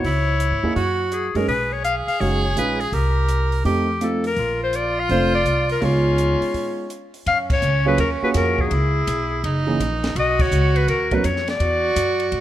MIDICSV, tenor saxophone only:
0, 0, Header, 1, 2, 480
1, 0, Start_track
1, 0, Tempo, 361228
1, 53, Time_signature, 4, 2, 24, 8
1, 16484, End_track
2, 0, Start_track
2, 0, Title_t, "Tenor saxophone"
2, 0, Program_c, 0, 66
2, 77, Note_on_c, 0, 64, 87
2, 972, Note_off_c, 0, 64, 0
2, 1007, Note_on_c, 0, 66, 90
2, 1749, Note_off_c, 0, 66, 0
2, 1966, Note_on_c, 0, 68, 110
2, 3902, Note_on_c, 0, 70, 98
2, 3922, Note_off_c, 0, 68, 0
2, 4853, Note_off_c, 0, 70, 0
2, 4861, Note_on_c, 0, 67, 93
2, 5451, Note_off_c, 0, 67, 0
2, 5823, Note_on_c, 0, 65, 105
2, 7733, Note_on_c, 0, 61, 83
2, 7753, Note_off_c, 0, 65, 0
2, 9485, Note_off_c, 0, 61, 0
2, 9664, Note_on_c, 0, 61, 84
2, 11523, Note_on_c, 0, 63, 65
2, 11543, Note_off_c, 0, 61, 0
2, 11598, Note_on_c, 0, 64, 92
2, 11618, Note_off_c, 0, 63, 0
2, 12545, Note_off_c, 0, 64, 0
2, 12554, Note_on_c, 0, 63, 96
2, 13509, Note_on_c, 0, 66, 100
2, 13529, Note_off_c, 0, 63, 0
2, 15098, Note_off_c, 0, 66, 0
2, 15417, Note_on_c, 0, 66, 105
2, 16484, Note_off_c, 0, 66, 0
2, 16484, End_track
0, 0, End_of_file